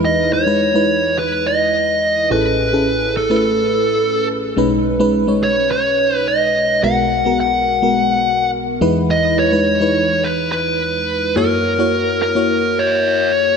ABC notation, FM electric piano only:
X:1
M:4/4
L:1/16
Q:1/4=106
K:Elyd
V:1 name="FM electric piano"
[G,DEB]2 z [G,DEB] z [G,DEB]6 z4 z | [CEG=A]2 z [CEGA]3 z [=A,CEB]6 z3 | [G,CDB]2 z [G,CDB] z [G,CDc]6 z4 z | [G,B,FA]2 z [G,B,FA]3 z [G,B,FA]6 z [G,DEB]2- |
[G,DEB]2 z [G,DEB] z [G,DEB]6 z4 z | [A,EFc]2 z [A,EFc]3 z [A,EFc]6 z3 |]
V:2 name="FM electric piano" clef=bass
[E,,E,]12- [E,,E,]2 z2 | [=A,,,=A,,]16 | [B,,,B,,]16 | [B,,,B,,]12- [B,,,B,,]2 [E,,E,]2- |
[E,,E,]12- [E,,E,]2 z2 | F,,16 |]